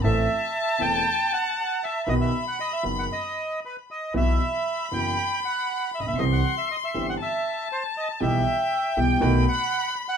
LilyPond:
<<
  \new Staff \with { instrumentName = "Violin" } { \time 4/4 \key b \phrygian \tempo 4 = 118 a''1 | b''2.~ b''8 r8 | b''1 | c'''2 a''2 |
g''2 b''2 | }
  \new Staff \with { instrumentName = "Bandoneon" } { \time 4/4 \key b \phrygian e''4. g''4 fis''4 e''8 | dis''16 e''8 fis''16 dis''16 e''8 fis''16 dis''4 b'8 dis''8 | e''4. g''4 fis''4 e''32 dis''32 e''16 | dis''16 fis''8 e''16 dis''16 e''8 fis''16 e''4 c''8 dis''8 |
e''4. g''4 fis''8~ \tuplet 3/2 { fis''8. r16 fis''8 } | }
  \new Staff \with { instrumentName = "Grand piano" } { \clef bass \time 4/4 \key b \phrygian <a,, a, e a c' a'>8 r4 <e,, e, e a c' a'>8 r2 | <b,, b, dis fis b fis'>8 r4 <fis,, fis, dis fis b fis'>8 r2 | <b,, b, e fis b fis'>8 r4 <fis,, fis, e fis b fis'>8 r4. r32 a,,32 ais,,32 b,,32 | <c, c e g c' g'>8 r4 <g,, g, e g c' g'>8 r2 |
<b,, b, e g b g'>8 r4 <b,, b, e g b g'>8 <b,, b, dis a b fis'>8 r4. | }
  \new Staff \with { instrumentName = "Upright bass" } { \clef bass \time 4/4 \key b \phrygian a,,16. r4 r32 e,,16. r2 r32 | b,,16. r4 r32 fis,,16. r2 r32 | b,,16. r4 r32 fis,,16. r4. r16 a,,32 ais,,32 b,,32 | c,16. r4 r32 g,,16. r2 r32 |
b,,16. r4 r32 b,,16. r32 b,,16. r4. r32 | }
>>